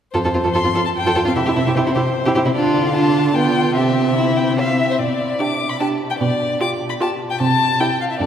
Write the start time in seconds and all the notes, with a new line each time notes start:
0.12 F2 F4 A4 C5
0.25 F2 F4 A4
0.34 F2 C4 F4
0.44 F2 F4 A4
0.54 F2 F4 A4 C6
0.64 F2 C4 F4
0.74 F2 F4 A4
0.85 A5
0.97 G5
1.05 F2 F4 A4
1.15 F2 F4 A4
1.25 F2 C4 F4 F5
1.35 C3 E4 G4 E5
1.45 C3 E4 G4
1.56 C3 C4 E4
1.66 C3 E4 G4
1.75 C3 E4 G4 C5
1.86 C3 C4 E4
1.95 C3 E4 G4
2.26 C3 E4 G4
2.35 C3 E4 G4
2.45 C3 C4 E4
2.55 D3 D4 F4 D5
2.87 F5
2.94 D4 F4 A5
3.35 B3 F4 G5
3.76 C3 C4 G4 E5
4.16 E4
4.37 G5
4.59 E5 F5
4.80 E5
4.91 C5
4.99 B2 D5
5.39 D4 G4 D6
5.70 B5
5.80 D4 G4 A5
6.10 G5
6.19 B2 D5
6.61 F4 G4 D6
6.89 B5
7.01 F4 G4 A5
7.30 G5
7.40 C3 A5
7.80 E4 G4 G5
8.01 F5
8.11 E5
8.20 F2 D4 A4 D5